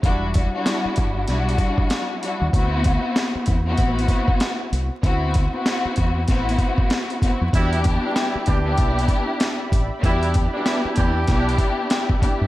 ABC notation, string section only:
X:1
M:4/4
L:1/16
Q:"Swing 16ths" 1/4=96
K:Em
V:1 name="String section"
[G,DEF]3 [G,DEF]4- [G,DEF] [G,DEF]6 [G,DEF]2 | [B,CEF]6 z [B,CEF]6- [B,CEF] z2 | [B,CEF]3 [B,CEF]4- [B,CEF] [B,CEF]6 [B,CEF]2 | [B,DEG]6 z [B,DEG]6- [B,DEG] z2 |
[B,DEG]3 [B,DEG]4- [B,DEG] [B,DEG]6 [B,DEG]2 |]